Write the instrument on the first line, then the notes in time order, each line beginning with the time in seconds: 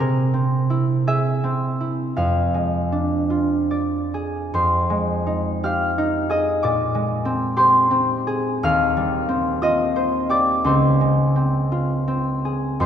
harp
Already playing: G#3 C4 G#4 C5
0.00 C3 A#4
0.34 C4
0.70 E4
1.07 G#4 E5
1.44 C4
1.80 E4
2.17 F2 F5
2.54 G#3
2.92 D4
3.30 F4
3.71 D5
4.14 G#4
4.54 F2 C5 C6
4.90 G#3
5.27 D#4
5.63 G4 F5 F6
5.98 D#4
6.30 G#4 D#5 D#6
6.63 A#2 D5 D6
6.95 G#3
7.25 C4
7.57 G4 C5 C6
7.91 C4
8.27 G#4
8.63 D#2 F5 F6
8.97 G3
9.29 C4
9.62 F4 D#5 D#6
9.96 C5
10.29 G4 D5 D6
10.64 C#2 C5 C6
11.01 G#3
11.36 C4
11.72 F4
12.08 C4
12.45 G#4
12.80 F2 C5 C6